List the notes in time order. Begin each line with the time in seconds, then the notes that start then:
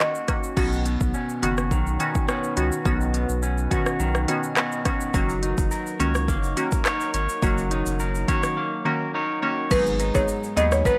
Already playing: D#3 A#3 C#4 F#4
0.00 F#4 D#5, cross-stick, clap, shaker
0.15 shaker
0.28 D#3 A#3 C#4 F#4, kick, cross-stick, closed hi-hat, shaker
0.43 shaker
0.57 B1 B2 D#3 B3 C#4 D#4 F#4 B4 C#5 F#5, kick, crash, shaker
0.72 shaker
0.86 B3, closed hi-hat, shaker
1.01 B1, kick, shaker
1.14 C#4, shaker
1.29 shaker
1.42 F#1 D#3 B3 C#4 F#4, closed hi-hat, shaker
1.58 cross-stick, shaker
1.71 B1 D#3, kick, shaker
1.87 shaker
2.00 D#3 B3 C#4 F#4, closed hi-hat, shaker
2.15 kick, shaker
2.28 B3 C#4 F#4, cross-stick, shaker
2.44 shaker
2.57 C#2 D#3 B3 C#4 F#4, closed hi-hat, shaker
2.72 shaker
2.85 B1 B2 D#3 B3 C#4 F#4 D#5, kick, shaker
3.01 shaker
3.14 B3, closed hi-hat, shaker
3.29 B1, shaker
3.43 C#4, shaker
3.58 shaker
3.71 D#3 B3 C#4 F#4, kick, closed hi-hat, shaker
3.86 cross-stick, shaker
4.00 B1 D#3, shaker
4.15 cross-stick, shaker
4.28 D#3 B3 C#4 F#4, closed hi-hat, shaker
4.43 shaker
4.57 B3 C#4 F#4, cross-stick, clap, shaker
4.72 shaker
4.85 D#3 B3 C#4 F#4, kick, cross-stick, closed hi-hat, shaker
5.01 shaker
5.14 F#1 D#3 F#3 A#3 C#4 F#4 A#4 C#5, kick, shaker
5.29 shaker
5.43 D#4, closed hi-hat, shaker
5.58 F#1, kick, shaker
5.71 A#4, shaker
5.86 shaker
5.99 C#2 D#3 A#3 C#4 F#4 C#5, closed hi-hat, shaker
6.15 cross-stick, shaker
6.28 F#1 A#3, kick, shaker
6.43 shaker
6.57 D#3 A#3 C#4 F#4 A#4, closed hi-hat, shaker
6.72 kick, shaker
6.85 D#4 A#4 C#5, cross-stick, clap, shaker
7.00 shaker
7.14 G#1 C#5, closed hi-hat, shaker
7.29 shaker
7.42 F#1 D#3 F#3 A#3 C#4 F#4, kick, shaker
7.58 shaker
7.71 D#4, closed hi-hat, shaker
7.86 F#1, shaker
8.00 A#4, shaker
8.15 shaker
8.28 D#3 A#3 C#4 F#4 C#5, kick, closed hi-hat, shaker
8.43 cross-stick, shaker
8.57 A#3
8.85 D#3 A#3 C#4 F#4 A#4
9.14 D#4 A#4 C#5
9.42 D#3 A#3 C#4 F#4 C#5
9.71 G#1 G#2 F#3 B3 D#4 G#4 B4 G#5, kick, crash, shaker
9.86 shaker
10.00 D#4, closed hi-hat, shaker
10.14 G#1 F#3 B3 D#4 G#4 C#5, kick, shaker
10.28 shaker
10.44 shaker
10.56 D#2 F#3 B3 D#4 G#4 D#5, closed hi-hat, shaker
10.72 C#5, cross-stick, shaker
10.85 G#1 B3 D#4 B4, kick, shaker